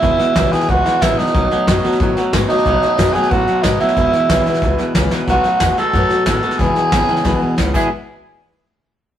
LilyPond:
<<
  \new Staff \with { instrumentName = "Tenor saxophone" } { \time 4/4 \key e \major \tempo 4 = 183 e'4. gis'8 fis'4 e'8 dis'8~ | dis'2~ dis'8 r4 dis'8~ | dis'4. gis'8 fis'4 dis'8 e'8~ | e'2. r4 |
fis'4. a'4. a'4 | gis'2. r8 gis'8 | r1 | }
  \new Staff \with { instrumentName = "Steel-string acoustic guitar" } { \time 4/4 \key e \major <e, b, e gis b e'>8 <e gis b e'>8 <e, b, e gis b e'>8 <e gis b e'>8 <e gis b e'>8 <e gis b e'>8 <e, b, e gis b e'>8 <e gis b e'>8 | <b, dis a b fis'>8 <a b fis'>8 <b, dis a b fis'>8 <a b fis'>8 <dis a b fis'>8 <a b fis'>8 <b, dis a b fis'>8 <a b fis'>8 | <b, dis a b fis'>8 <a b fis'>8 <b, dis a b fis'>8 <a b fis'>8 <dis a b fis'>8 <a b fis'>8 <b, dis a b fis'>8 <a b fis'>8 | <e, b, e gis b e'>8 <e gis b e'>8 <e, b, e gis b e'>8 <e gis b e'>8 <e gis b e'>8 <e gis b e'>8 <e, b, e gis b e'>8 <e gis b e'>8 |
<b, dis a b fis'>8 <a b fis'>8 <dis a b fis'>8 <a b fis'>8 <b, dis a b fis'>8 <a b fis'>8 <dis a b fis'>8 <a b fis'>8 | <e, b, e gis b e'>8 <e gis b e'>8 <e gis b e'>8 <e gis b e'>8 <e, b, e gis b e'>8 <e gis b e'>8 <e gis b e'>8 <e, b, e gis b e'>8 | r1 | }
  \new Staff \with { instrumentName = "Clean electric guitar" } { \clef bass \time 4/4 \key e \major <e, b,>8 <e, b,>8 <e, cis>8 <e, b,>8 <e, b,>8 <e, b,>8 <e, cis>8 <e, b,>8 | <b, fis>8 <b, fis>8 <b, gis>8 <b, fis>8 <b, fis>8 <b, fis>8 <b, gis>8 <b, fis>8 | <b, fis>8 <b, fis>8 <b, gis>8 <b, fis>8 <b, fis>8 <b, fis>8 <b, gis>8 <b, fis>8 | <e, b,>8 <e, b,>8 <e, cis>8 <e, b,>8 b,8 <e, b,>8 <e, cis>8 <e, b,>8 |
<b, fis>4 <b, gis>8 <b, gis>8 <b, fis>4 <b, gis>8 <b, gis>8 | <e, b,>4 <e, cis>8 <e, cis>8 <e, b,>4 <e, cis>8 <e gis b e' gis'>8 | r1 | }
  \new Staff \with { instrumentName = "Upright bass" } { \clef bass \time 4/4 \key e \major e,,8 r8 b,,8 r8 cis,8 r8 a,,8 r8 | b,,8 r8 fis,8 r8 a,8 r8 gis,8 r8 | b,,8 r8 fis,8 r8 a,8 r8 gis,8 r8 | e,,8 r8 b,,8 r8 cis,8 r8 cis,8 r8 |
b,,8 r8 e,8 r8 fis,8 r8 a,8 r8 | e,,8 r8 gis,,8 r8 b,,8 r8 cis,8 e,,8 | r1 | }
  \new DrumStaff \with { instrumentName = "Drums" } \drummode { \time 4/4 <bd sn>8 sn8 <hhp bd sn>8 sn16 sn16 <bd sn>8 sn8 <hhp bd sn>8 sn16 sn16 | <bd sn>8 sn8 <hhp bd sn>8 sn16 sn16 <bd sn>8 sn8 <hhp bd sn>8 sn16 sn16 | <bd sn>8 sn8 <hhp bd sn>8 sn16 sn16 <bd sn>8 sn8 <hhp bd sn>8 sn16 sn16 | <bd sn>8 sn8 <hhp bd sn>8 sn16 sn16 <bd sn>8 sn8 <hhp bd sn>8 sn8 |
<bd sn>8 sn8 <hhp bd sn>8 sn8 <bd sn>8 sn8 <hhp bd sn>8 sn16 sn16 | <bd sn>8 sn8 <hhp bd sn>8 sn16 sn16 <bd sn>4 <hhp bd sn>8 <cymc bd>8 | r4 r4 r4 r4 | }
>>